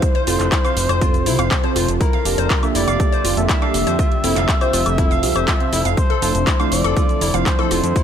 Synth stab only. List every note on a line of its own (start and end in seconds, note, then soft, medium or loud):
0.27 0.61 C4 medium
0.27 0.61 F4 medium
0.27 0.61 A4 medium
0.64 0.99 C4 loud
0.64 0.99 F4 medium
0.64 0.99 C5 loud
1.01 1.36 C4 medium
1.01 1.36 F4 medium
1.01 1.36 A4 loud
1.39 1.61 C4 medium
1.39 1.61 F4 medium
1.39 1.61 C5 loud
1.64 1.99 C4 loud
1.64 1.99 F4 medium
1.64 1.99 A4 loud
2.25 2.60 A#3 medium
2.25 2.60 D4 medium
2.25 2.60 G4 medium
2.25 2.60 D5 medium
2.25 2.60 A5 medium
2.63 2.97 A#3 loud
2.63 2.97 D4 medium
2.63 2.97 G4 medium
2.63 2.97 A4 medium
2.63 2.97 E5 loud
3.00 3.34 A#3 medium
3.00 3.34 D4 medium
3.00 3.34 G4 medium
3.00 3.34 A4 medium
3.00 3.34 D5 loud
3.37 3.59 A#3 medium
3.37 3.59 D4 medium
3.37 3.59 G4 medium
3.37 3.59 A4 medium
3.37 3.59 E5 medium
3.62 3.98 A#3 loud
3.62 3.98 D4 medium
3.62 3.98 G4 medium
3.62 3.98 A4 medium
3.62 3.98 D5 loud
4.24 4.58 C4 medium
4.24 4.58 F4 medium
4.24 4.58 A4 medium
4.61 4.95 C4 loud
4.61 4.95 F4 loud
4.61 4.95 C5 loud
4.98 5.21 C4 medium
4.98 5.21 F4 medium
4.98 5.21 A4 loud
5.23 5.57 C4 medium
5.23 5.57 F4 medium
5.23 5.57 G4 medium
5.60 5.77 C4 medium
5.60 5.77 F4 medium
5.60 5.77 C5 loud
6.22 6.57 F3 medium
6.22 6.57 A3 medium
6.22 6.57 D4 medium
6.22 6.57 E4 medium
6.22 6.57 A4 medium
6.60 6.94 F3 loud
6.60 6.94 A3 medium
6.60 6.94 D4 medium
6.60 6.94 E4 medium
6.60 6.94 C5 loud
6.97 7.31 F3 medium
6.97 7.31 A3 medium
6.97 7.31 D4 medium
6.97 7.31 E4 medium
6.97 7.31 A4 loud
7.34 7.56 F3 medium
7.34 7.56 A3 medium
7.34 7.56 D4 medium
7.34 7.56 E4 medium
7.34 7.56 C5 medium
7.59 7.94 F3 loud
7.59 7.94 A3 medium
7.59 7.94 D4 medium
7.59 7.94 E4 medium
7.59 7.94 A4 loud